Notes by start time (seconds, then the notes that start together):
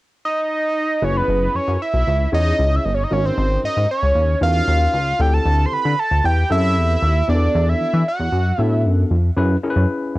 0.25 D#5
1.02 F#1 C#4 E4 G#4 B4 C#5
1.17 B4
1.28 F#1
1.55 F#2 C#5
1.68 F#2
1.82 E5
1.94 B1
2.07 C#2
2.32 E2 C#4 E4 G#4 C#5 D#5
2.59 C#2
2.76 E5
2.85 G1 D#5
2.94 C#5
3.04 D#5
3.11 G#1 C#4 D#4 F#4 A#4 C#5
3.25 C5
3.38 G#1
3.64 G#2 D#5
3.77 G#2
3.91 C#5
4.03 C#2
4.15 D#2
4.41 E2 C#4 D#4 F#4 A#4 F5
4.68 D#2
4.94 C#2
5.19 D2 C4 E4 G4 A4 G5
5.34 A5
5.46 D2
5.66 C6
5.72 D3 B5
5.85 D3
5.99 A5
6.11 D2
6.24 E2 G5
6.50 F#2 C4 E4 F#4 A4 E5
6.56 G4
6.76 E2
7.02 D#2
7.28 E2 B3 D4 F#4 G#4 D5
7.35 A4
7.55 E2
7.69 E5
7.80 E3
7.94 E3
8.09 F#5
8.20 E2
8.32 F#2
8.58 A2 B3 D4 F#4 A4
8.63 E5
8.85 F#2
9.11 F2
9.37 F#2 C#4 E4 G#4 B4
9.63 C#4 E4 G#4 A#4
9.70 B4
9.76 F#2
10.15 F#2